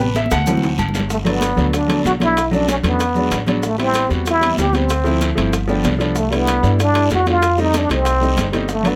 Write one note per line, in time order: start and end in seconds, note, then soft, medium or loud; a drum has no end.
0.00 0.25 A1 loud
0.00 0.15 B4 medium
0.00 maracas soft
0.15 0.31 E5 medium
0.15 cowbell medium
0.15 high bongo medium
0.15 high conga medium
0.15 low agogo medium
0.15 short guiro medium
0.15 maracas soft
0.26 high conga medium
0.31 0.75 D2 loud
0.31 0.75 F#5 loud
0.31 cowbell medium
0.31 high bongo loud
0.31 low agogo loud
0.31 short guiro medium
0.31 maracas medium
0.46 0.68 E3 medium
0.46 0.68 F#3 medium
0.46 0.68 C4 medium
0.46 cowbell loud
0.46 high bongo medium
0.46 low conga medium
0.46 low agogo loud
0.46 long guiro medium
0.46 maracas loud
0.57 low conga medium
0.63 high timbale medium
0.63 maracas soft
0.78 1.52 G1 medium
0.78 cowbell medium
0.78 low conga medium
0.78 low agogo loud
0.78 short guiro medium
0.78 maracas soft
0.89 low conga medium
0.94 low bongo medium
0.94 low timbale medium
0.94 low agogo medium
0.94 short guiro medium
0.94 maracas medium
1.00 low conga loud
1.10 1.18 A3 medium
1.10 high bongo medium
1.10 high conga soft
1.10 long guiro medium
1.10 maracas medium
1.25 1.47 F#3 medium
1.25 1.48 A3 medium
1.25 1.48 B3 medium
1.25 1.48 D4 loud
1.25 high bongo soft
1.25 high conga soft
1.25 high timbale medium
1.25 maracas soft
1.29 1.76 B3 medium
1.41 high bongo medium
1.41 high conga loud
1.41 high timbale medium
1.41 low timbale medium
1.41 short guiro medium
1.41 maracas medium
1.56 2.01 D2 medium
1.56 1.79 F#3 medium
1.56 1.79 A3 medium
1.56 1.79 B3 medium
1.56 1.80 D4 medium
1.56 high bongo soft
1.56 high conga soft
1.56 short guiro medium
1.56 maracas soft
1.73 2.05 D4 medium
1.73 high bongo medium
1.73 high conga soft
1.73 high timbale medium
1.73 long guiro medium
1.73 maracas medium
1.88 2.10 F#3 medium
1.88 2.11 A3 medium
1.88 2.11 B3 medium
1.88 2.11 D4 medium
1.88 high conga soft
1.88 high timbale loud
1.88 maracas soft
2.04 2.78 B1 medium
2.04 2.13 F#4 medium
2.04 high bongo soft
2.04 low bongo medium
2.04 high conga medium
2.04 low timbale medium
2.04 short guiro medium
2.04 maracas medium
2.19 2.36 F#3 medium
2.19 2.36 A3 medium
2.19 2.36 B3 medium
2.19 2.37 D4 medium
2.19 2.51 E4 medium
2.19 high bongo soft
2.19 high conga medium
2.19 high timbale medium
2.19 short guiro medium
2.19 maracas soft
2.37 high bongo medium
2.37 high timbale medium
2.37 long guiro medium
2.37 maracas medium
2.51 2.74 F#3 medium
2.51 2.74 A3 medium
2.51 2.74 C#4 medium
2.51 2.75 D4 loud
2.51 2.67 D4 medium
2.51 high bongo soft
2.51 high conga soft
2.51 maracas soft
2.68 2.76 C#4 medium
2.68 high bongo medium
2.68 high conga medium
2.68 high timbale medium
2.68 low timbale medium
2.68 short guiro medium
2.68 maracas medium
2.83 3.28 E2 loud
2.83 2.99 F#3 medium
2.83 2.99 A3 medium
2.83 3.44 B3 medium
2.83 3.00 C#4 medium
2.83 3.00 D4 medium
2.83 high bongo soft
2.83 high conga soft
2.83 high timbale medium
2.83 short guiro medium
2.83 maracas soft
2.99 high bongo medium
2.99 high conga soft
2.99 high timbale medium
2.99 long guiro medium
2.99 maracas medium
3.15 3.37 F#3 medium
3.15 3.38 G#3 medium
3.15 3.38 B3 medium
3.15 3.38 D4 medium
3.15 high conga soft
3.15 maracas soft
3.31 4.05 A1 medium
3.31 high bongo soft
3.31 low bongo medium
3.31 high conga medium
3.31 high timbale medium
3.31 low timbale medium
3.31 short guiro medium
3.31 maracas medium
3.46 3.63 F#3 medium
3.46 3.63 G#3 medium
3.46 3.63 B3 medium
3.46 3.63 D4 medium
3.46 high bongo soft
3.46 high conga medium
3.46 high timbale medium
3.46 short guiro medium
3.46 maracas soft
3.63 3.79 A3 medium
3.63 high bongo medium
3.63 high conga soft
3.63 long guiro medium
3.63 maracas medium
3.78 4.01 G3 medium
3.78 4.01 B3 medium
3.78 4.01 C4 medium
3.78 4.09 C4 loud
3.78 4.01 E4 medium
3.78 high bongo soft
3.78 high conga soft
3.78 high timbale medium
3.78 maracas soft
3.94 high bongo medium
3.94 high conga medium
3.94 high timbale medium
3.94 low timbale medium
3.94 short guiro medium
3.94 maracas medium
4.09 4.54 E2 medium
4.09 4.32 G3 medium
4.09 4.32 B3 medium
4.09 4.32 C4 medium
4.09 4.33 F#4 medium
4.09 high bongo soft
4.09 high conga soft
4.09 short guiro medium
4.09 maracas soft
4.26 4.57 E4 loud
4.26 high bongo medium
4.26 high conga soft
4.26 high timbale medium
4.26 long guiro medium
4.26 maracas medium
4.41 4.64 G3 medium
4.41 4.64 B3 medium
4.41 4.64 C4 medium
4.41 4.64 E4 medium
4.41 high conga soft
4.41 high timbale medium
4.41 maracas soft
4.57 5.31 D2 medium
4.57 4.77 G4 loud
4.57 high bongo soft
4.57 low bongo medium
4.57 high conga medium
4.57 low timbale medium
4.57 short guiro medium
4.57 maracas medium
4.72 4.89 G3 medium
4.72 4.89 B3 medium
4.72 4.90 C4 medium
4.72 5.38 C4 medium
4.72 4.90 G4 medium
4.72 high bongo soft
4.72 high conga medium
4.72 high timbale medium
4.72 short guiro medium
4.72 maracas soft
4.89 high bongo medium
4.89 high conga soft
4.89 high timbale medium
4.89 long guiro medium
4.89 maracas medium
5.04 5.27 F3 medium
5.04 5.27 A3 medium
5.04 5.27 C4 medium
5.04 5.28 E4 loud
5.04 high bongo soft
5.04 high conga soft
5.04 maracas soft
5.21 high bongo medium
5.21 high conga medium
5.21 high timbale medium
5.21 low timbale medium
5.21 short guiro medium
5.21 maracas medium
5.35 5.81 G1 medium
5.35 5.52 F3 medium
5.35 5.52 A3 medium
5.35 5.53 C4 medium
5.35 5.53 E4 medium
5.35 high conga soft
5.35 high timbale medium
5.35 short guiro medium
5.35 maracas soft
5.52 high bongo medium
5.52 high conga soft
5.52 high timbale medium
5.52 long guiro medium
5.52 maracas medium
5.68 5.90 F3 medium
5.68 5.90 A3 medium
5.68 5.91 B3 medium
5.68 5.91 D4 loud
5.68 5.83 G5 medium
5.68 high conga soft
5.68 maracas soft
5.84 6.58 C2 medium
5.84 6.14 D5 medium
5.84 high bongo soft
5.84 low bongo medium
5.84 high conga medium
5.84 high timbale medium
5.84 low timbale medium
5.84 short guiro medium
5.84 maracas medium
5.99 6.15 F3 medium
5.99 6.16 A3 medium
5.99 6.16 B3 medium
5.99 6.16 D4 medium
5.99 high bongo soft
5.99 high timbale medium
5.99 short guiro medium
5.99 maracas soft
6.15 6.35 A3 medium
6.15 high bongo medium
6.15 high conga soft
6.15 long guiro medium
6.15 maracas medium
6.31 6.53 G3 medium
6.31 6.54 A3 medium
6.31 6.80 B3 medium
6.31 6.54 D4 medium
6.31 6.54 E4 medium
6.31 high bongo soft
6.31 high conga soft
6.31 high timbale medium
6.31 maracas soft
6.47 high bongo medium
6.47 high conga medium
6.47 high timbale medium
6.47 low timbale medium
6.47 short guiro medium
6.47 maracas medium
6.62 7.07 G2 loud
6.62 6.85 G3 medium
6.62 6.85 A3 medium
6.62 6.86 D4 medium
6.62 6.86 E4 medium
6.62 high bongo soft
6.62 high conga soft
6.62 short guiro medium
6.62 maracas soft
6.79 7.10 D4 medium
6.79 high bongo medium
6.79 high conga soft
6.79 high timbale medium
6.79 long guiro medium
6.79 maracas medium
6.94 7.16 G3 medium
6.94 7.17 A3 medium
6.94 7.17 D4 medium
6.94 7.17 E4 medium
6.94 high conga soft
6.94 high timbale loud
6.94 maracas soft
7.10 7.84 F2 medium
7.10 7.27 F#4 loud
7.10 high bongo soft
7.10 low bongo medium
7.10 high conga medium
7.10 low timbale medium
7.10 short guiro medium
7.10 maracas medium
7.26 7.42 G3 medium
7.26 7.42 A3 medium
7.26 7.43 D4 medium
7.26 7.58 F4 loud
7.26 7.43 F#4 medium
7.26 high bongo soft
7.26 high conga medium
7.26 high timbale medium
7.26 short guiro medium
7.26 maracas soft
7.42 high bongo medium
7.42 high conga soft
7.42 high timbale medium
7.42 long guiro medium
7.42 maracas medium
7.57 7.80 G3 medium
7.57 7.80 A3 medium
7.57 7.81 C4 medium
7.57 7.81 D#4 loud
7.57 high bongo soft
7.57 high conga soft
7.57 maracas soft
7.62 7.78 D#4 medium
7.74 7.91 D4 loud
7.74 high bongo medium
7.74 high conga medium
7.74 high timbale medium
7.74 low timbale medium
7.74 short guiro medium
7.74 maracas medium
7.89 8.34 C2 medium
7.89 8.12 G3 medium
7.89 8.12 A3 medium
7.89 8.12 C4 medium
7.89 8.51 C4 medium
7.89 8.13 D#4 medium
7.89 high bongo soft
7.89 high conga soft
7.89 high timbale medium
7.89 short guiro medium
7.89 maracas soft
8.05 high bongo medium
8.05 high conga soft
8.05 high timbale medium
8.05 long guiro medium
8.05 maracas medium
8.21 8.43 G3 medium
8.21 8.44 A3 medium
8.21 8.44 C4 medium
8.21 8.44 D#4 medium
8.21 high conga soft
8.21 maracas soft
8.37 8.96 G1 medium
8.37 high bongo soft
8.37 low bongo medium
8.37 high conga medium
8.37 high timbale medium
8.37 low timbale medium
8.37 short guiro medium
8.37 maracas medium
8.52 8.68 G3 medium
8.52 8.69 A3 medium
8.52 8.69 C4 medium
8.52 8.69 D#4 medium
8.52 high bongo soft
8.52 high conga medium
8.52 high timbale medium
8.52 short guiro medium
8.52 maracas soft
8.69 8.89 A3 medium
8.69 high bongo medium
8.69 high conga soft
8.69 long guiro medium
8.69 maracas medium
8.83 8.96 F#3 medium
8.83 8.96 A3 medium
8.83 8.96 B3 medium
8.83 8.96 D4 loud
8.83 high bongo soft
8.83 high timbale medium
8.83 maracas soft
8.88 8.96 B3 medium